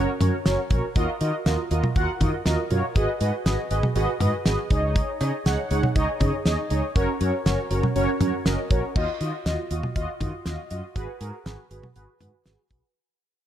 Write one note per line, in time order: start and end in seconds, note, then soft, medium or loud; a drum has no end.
0.21 0.30 F#2 loud
0.21 0.35 C#4 medium
0.21 0.35 F#4 medium
0.21 0.35 A#4 medium
0.21 0.35 C#5 loud
0.21 closed hi-hat medium
0.21 mid tom loud
0.46 0.55 F#1 loud
0.46 0.60 C#4 medium
0.46 0.60 F#4 medium
0.46 0.60 A#4 medium
0.46 0.60 C#5 loud
0.46 snare loud
0.46 closed hi-hat medium
0.70 0.80 A#1 medium
0.70 0.85 C#4 medium
0.70 0.85 F#4 medium
0.70 0.85 A#4 medium
0.70 0.85 C#5 loud
0.70 kick loud
0.70 closed hi-hat medium
0.70 mid tom medium
0.96 1.05 D#2 loud
0.96 1.10 F4 loud
0.96 1.10 F#4 loud
0.96 1.10 A#4 loud
0.96 1.10 D#5 loud
0.96 kick loud
0.96 closed hi-hat medium
1.21 1.30 D#3 loud
1.21 1.35 F4 medium
1.21 1.35 F#4 medium
1.21 1.35 A#4 medium
1.21 1.35 D#5 loud
1.21 closed hi-hat medium
1.46 1.55 D#2 loud
1.46 1.60 F4 medium
1.46 1.60 F#4 medium
1.46 1.60 A#4 medium
1.46 1.60 D#5 loud
1.46 snare loud
1.46 closed hi-hat medium
1.71 1.80 D#2 loud
1.71 1.85 F4 medium
1.71 1.85 F#4 medium
1.71 1.85 A#4 medium
1.71 1.85 D#5 loud
1.71 closed hi-hat medium
1.83 mid tom loud
1.96 2.05 D#2 loud
1.96 2.10 F4 loud
1.96 2.10 F#4 loud
1.96 2.10 A#4 loud
1.96 2.10 F#5 loud
1.96 kick loud
1.96 closed hi-hat medium
2.21 2.30 D#3 loud
2.21 2.35 F4 medium
2.21 2.35 F#4 medium
2.21 2.35 A#4 medium
2.21 2.35 D#5 loud
2.21 kick medium
2.21 closed hi-hat medium
2.21 mid tom loud
2.46 2.55 D#2 loud
2.46 2.60 F4 medium
2.46 2.60 F#4 medium
2.46 2.60 A#4 medium
2.46 2.60 D#5 loud
2.46 snare loud
2.46 closed hi-hat medium
2.70 2.80 F#2 medium
2.70 2.85 F4 medium
2.70 2.85 F#4 medium
2.70 2.85 A#4 medium
2.70 2.85 C#5 loud
2.70 closed hi-hat medium
2.70 mid tom medium
2.96 3.05 G#1 loud
2.96 3.10 F#4 loud
2.96 3.10 G#4 loud
2.96 3.10 B4 loud
2.96 3.10 D#5 loud
2.96 kick loud
2.96 closed hi-hat medium
3.21 3.30 G#2 loud
3.21 3.35 F#4 medium
3.21 3.35 G#4 medium
3.21 3.35 B4 medium
3.21 3.35 D#5 loud
3.21 closed hi-hat medium
3.46 3.55 G#1 loud
3.46 3.60 F#4 medium
3.46 3.60 G#4 medium
3.46 3.60 B4 medium
3.46 3.60 D#5 loud
3.46 snare loud
3.46 closed hi-hat medium
3.71 3.80 G#1 loud
3.71 3.85 F#4 medium
3.71 3.85 G#4 medium
3.71 3.85 B4 medium
3.71 3.85 D#5 loud
3.71 closed hi-hat medium
3.83 mid tom loud
3.96 4.05 G#1 loud
3.96 4.10 F#4 loud
3.96 4.10 G#4 loud
3.96 4.10 B4 loud
3.96 4.10 D#5 loud
3.96 closed hi-hat medium
4.20 4.30 G#2 loud
4.20 4.35 F#4 medium
4.20 4.35 G#4 medium
4.20 4.35 B4 medium
4.20 4.35 D#5 loud
4.20 closed hi-hat medium
4.20 mid tom loud
4.46 4.55 G#1 medium
4.46 4.60 F#4 medium
4.46 4.60 G#4 medium
4.46 4.60 B4 medium
4.46 4.60 D#5 loud
4.46 snare loud
4.46 closed hi-hat medium
4.70 4.99 C#2 loud
4.70 5.11 D#4 medium
4.70 5.11 G#4 medium
4.70 5.11 C#5 medium
4.70 5.11 D#5 loud
4.70 kick loud
4.70 closed hi-hat medium
4.96 kick loud
4.96 closed hi-hat medium
5.21 5.30 C#3 loud
5.21 5.35 D#4 medium
5.21 5.35 G#4 medium
5.21 5.35 C#5 medium
5.21 5.35 D#5 loud
5.21 closed hi-hat medium
5.21 cowbell medium
5.46 5.55 C#2 loud
5.46 5.60 D#4 medium
5.46 5.60 G#4 medium
5.46 5.60 C#5 medium
5.46 5.60 F#5 loud
5.46 snare loud
5.46 closed hi-hat medium
5.71 5.80 C#2 loud
5.71 5.85 D#4 medium
5.71 5.85 G#4 medium
5.71 5.85 C#5 medium
5.71 5.85 F#5 loud
5.71 closed hi-hat medium
5.83 mid tom loud
5.95 6.05 C#2 loud
5.95 6.10 D#4 loud
5.95 6.10 G#4 loud
5.95 6.10 C#5 loud
5.95 6.09 D#5 loud
5.95 kick loud
5.95 closed hi-hat medium
6.21 6.30 C#3 loud
6.21 6.35 D#4 medium
6.21 6.35 G#4 medium
6.21 6.35 C#5 medium
6.21 6.35 D#5 loud
6.21 kick medium
6.21 closed hi-hat medium
6.21 mid tom loud
6.46 6.55 D#2 loud
6.46 6.60 D#4 medium
6.46 6.60 G#4 medium
6.46 6.60 C#5 medium
6.46 6.60 D#5 loud
6.46 snare loud
6.46 closed hi-hat medium
6.70 6.80 C#2 loud
6.70 6.85 D#4 medium
6.70 6.85 G#4 medium
6.70 6.85 C#5 medium
6.70 6.85 D#5 loud
6.70 closed hi-hat medium
6.95 7.05 F#1 loud
6.95 7.09 C#4 loud
6.95 7.10 F#4 loud
6.95 7.10 A#4 loud
6.95 7.10 C#5 loud
6.95 kick loud
6.95 closed hi-hat medium
7.21 7.30 F#2 loud
7.21 7.35 C#4 medium
7.21 7.35 F#4 medium
7.21 7.35 A#4 medium
7.21 7.35 C#5 loud
7.21 closed hi-hat medium
7.46 7.55 F#1 loud
7.46 7.60 C#4 medium
7.46 7.60 F#4 medium
7.46 7.60 A#4 medium
7.46 7.60 C#5 loud
7.46 snare loud
7.46 closed hi-hat medium
7.71 7.80 F#1 loud
7.71 7.85 C#4 medium
7.71 7.85 F#4 medium
7.71 7.85 A#4 medium
7.71 7.85 C#5 loud
7.71 closed hi-hat medium
7.83 mid tom loud
7.96 8.05 F#1 loud
7.96 8.10 C#4 loud
7.96 8.10 F#4 loud
7.96 8.10 A#4 loud
7.96 8.10 C#5 loud
7.96 closed hi-hat medium
8.21 8.30 F#2 loud
8.21 8.35 C#4 medium
8.21 8.35 F#4 medium
8.21 8.35 A#4 medium
8.21 8.35 C#5 medium
8.21 closed hi-hat medium
8.21 mid tom loud
8.46 8.55 F#1 medium
8.46 8.60 C#4 medium
8.46 8.60 F#4 medium
8.46 8.60 A#4 medium
8.46 8.60 D#5 loud
8.46 snare loud
8.46 closed hi-hat medium
8.71 8.80 A#1 medium
8.71 8.85 C#4 medium
8.71 8.85 F#4 medium
8.71 8.85 A#4 medium
8.71 8.85 C#5 medium
8.71 kick loud
8.71 closed hi-hat medium
8.96 9.05 D#2 loud
8.96 9.10 F4 loud
8.96 9.10 F#4 loud
8.96 9.10 D#5 loud
8.96 kick loud
8.96 crash medium
9.21 9.30 D#3 medium
9.21 9.35 F4 medium
9.21 9.35 F#4 medium
9.21 9.35 D#5 loud
9.21 closed hi-hat medium
9.46 9.55 D#2 loud
9.46 9.60 F4 medium
9.46 9.60 F#4 medium
9.46 9.60 D#5 loud
9.46 snare loud
9.46 closed hi-hat medium
9.71 9.80 D#2 loud
9.71 9.85 F4 medium
9.71 9.85 F#4 medium
9.71 9.85 D#5 medium
9.71 closed hi-hat medium
9.83 mid tom medium
9.96 10.05 D#2 loud
9.96 10.10 F4 loud
9.96 10.10 F#4 medium
9.96 10.10 D#5 loud
9.96 kick medium
9.96 closed hi-hat medium
10.21 10.30 D#3 medium
10.21 10.35 F4 medium
10.21 10.35 F#4 medium
10.21 10.35 D#5 medium
10.21 kick medium
10.21 closed hi-hat medium
10.21 mid tom loud
10.46 10.55 D#2 medium
10.46 10.60 F4 medium
10.46 10.60 F#4 medium
10.46 10.60 D#5 medium
10.46 snare loud
10.46 closed hi-hat medium
10.70 10.80 F#2 medium
10.70 10.85 F4 medium
10.70 10.85 F#4 medium
10.70 10.85 D#5 medium
10.70 closed hi-hat medium
10.96 11.05 G#1 loud
10.96 11.10 F#4 loud
10.96 11.10 G#4 loud
10.96 11.10 B4 loud
10.96 kick loud
10.96 closed hi-hat medium
11.20 11.30 G#2 medium
11.20 11.34 F#4 medium
11.20 11.34 G#4 medium
11.20 11.34 A#4 medium
11.20 closed hi-hat medium
11.45 11.55 G#1 loud
11.45 11.59 F#4 medium
11.45 11.60 G#4 medium
11.45 11.59 B4 medium
11.45 snare loud
11.45 closed hi-hat medium
11.71 11.80 G#1 medium
11.71 11.85 F#4 medium
11.71 11.85 G#4 medium
11.71 11.85 B4 medium
11.71 closed hi-hat medium
11.83 mid tom medium
11.96 12.05 G#1 loud
11.96 12.10 F#4 loud
11.96 12.10 G#4 medium
11.96 12.10 B4 loud
11.96 closed hi-hat medium
12.21 12.30 G#2 medium
12.21 12.35 F#4 medium
12.21 12.35 G#4 medium
12.21 12.35 B4 medium
12.21 closed hi-hat medium
12.21 mid tom medium
12.46 12.55 G#1 medium
12.46 12.60 F#4 medium
12.46 12.60 G#4 medium
12.46 12.60 B4 medium
12.46 snare loud
12.46 closed hi-hat medium
12.70 12.80 B1 medium
12.70 12.85 F#4 medium
12.70 12.85 G#4 medium
12.70 12.85 B4 medium
12.70 kick loud
12.70 closed hi-hat medium